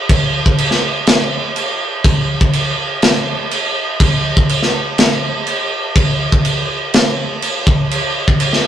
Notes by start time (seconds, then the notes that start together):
0.09 kick, crash
0.46 kick
0.58 crash
0.71 snare
1.07 snare, crash
1.56 crash
2.04 kick, crash
2.41 kick
2.53 crash
3.02 snare, crash
3.51 crash
4.00 kick, crash
4.37 kick
4.49 crash
4.63 snare
4.98 snare, crash
5.47 crash
5.96 kick, crash
6.32 kick
6.45 crash
6.94 snare, crash
7.42 crash
7.67 kick
7.91 crash
8.28 kick
8.40 crash
8.53 snare